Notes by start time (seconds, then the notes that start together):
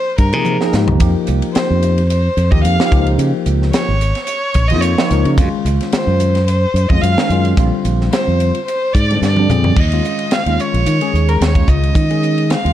Already playing: C5
0.18 G2 A#4, kick, hi-hat pedal, ride
0.33 C3 F3 A#3 D#4 G#4, ride
0.45 hi-hat pedal, high tom
0.61 F3 A#3 D#4 G#4, snare
0.73 G#2 F3 A#3 D#4 G4, snare, hi-hat pedal
0.88 C2, floor tom
1.00 F2 F3 A#3 D#4 G4, kick, hi-hat pedal, ride
1.15 muted fingered electric bass stroke
1.27 C2, hi-hat pedal, ride
1.42 ride
1.53 C5, muted fingered electric bass stroke, snare, hi-hat pedal, ride
1.70 F2
1.82 hi-hat pedal, ride
1.98 ride
2.09 C5, hi-hat pedal, ride
2.37 F2, hi-hat pedal, ride
2.51 D#2 F3 A#3 D#4 G4 D#5, kick
2.64 F2 F5, hi-hat pedal, ride
2.80 F3 A#3 D#4 G4, snare
2.92 C#2 F3 A#3 D#4 G4, kick, hi-hat pedal, ride
3.07 ride
3.18 C#3, hi-hat pedal, ride
3.46 C#2, hi-hat pedal, ride
3.62 snare
3.72 C#5, snare, hi-hat pedal, ride
3.88 G#1
4.01 hi-hat pedal, ride
4.15 snare, ride
4.25 C#5, hi-hat pedal, ride
4.54 A#1, kick, hi-hat pedal, ride
4.68 F2 F3 A#3 D#4 F4 D#5, ride
4.81 C#5, hi-hat pedal, ride
4.97 F3 A#3 D#4 F4, snare
5.11 C#2 F3 A#3 D#4 A#4, hi-hat pedal, ride
5.25 C#3, ride
5.38 F#2 D#3 G#3 C#4 F4, kick, hi-hat pedal, ride
5.53 muted fingered electric bass stroke
5.65 C#2, hi-hat pedal, ride
5.81 snare, ride
5.92 C5, muted fingered electric bass stroke, snare, hi-hat pedal, ride
6.07 F#2
6.20 hi-hat pedal, ride
6.35 snare, ride
6.47 C5, hi-hat pedal, ride
6.74 F#2, hi-hat pedal, ride
6.89 F2 D#3 G#3 C#4 F4 D#5, kick
7.01 F#2 F5, hi-hat pedal, ride
7.17 D#3 G#3 C#4 D#4, snare
7.30 F#2 D#3 G#3 C#4 F4, hi-hat pedal, ride
7.45 ride
7.57 A#1 D3 G3 C4 F4, kick, hi-hat pedal, ride
7.85 A#1, hi-hat pedal, ride
8.01 snare
8.12 C5, snare, hi-hat pedal, ride
8.28 F2
8.40 hi-hat pedal, ride
8.55 ride
8.66 C5, hi-hat pedal, ride
8.93 G#2 D5, kick, hi-hat pedal, ride
9.10 D3 G3 C4 D4, ride
9.22 G2 D5, snare, hi-hat pedal
9.37 D3 G3 C4 D4, high tom
9.49 F2 D3 G3 C4 G#4, hi-hat pedal, mid tom
9.64 floor tom
9.76 D#2 D#5, kick, crash
9.92 D#3 G#3 C#4 F4, ride
10.04 hi-hat pedal
10.19 ride
10.31 F5, snare, hi-hat pedal, ride
10.46 D#2 D#3 G#3 C#4 F4, ride
10.59 C#5, hi-hat pedal
10.74 A#1, ride
10.86 D#3, hi-hat pedal, ride
11.01 D#3 G#3 C#4 G#4, ride
11.13 D#2, hi-hat pedal
11.29 A#4, ride
11.41 D#2 C#5, snare, hi-hat pedal, ride
11.55 D#3 G#3 C#4 F4, kick, ride
11.68 C#2 D#5, kick, hi-hat pedal
11.83 ride
11.95 D#3, kick, hi-hat pedal, ride
12.10 D#3 G#3 C#4 G#4, ride
12.23 hi-hat pedal
12.38 ride
12.50 F5, snare, hi-hat pedal, ride
12.64 D#2 D#3 G#3 C#4 F4, ride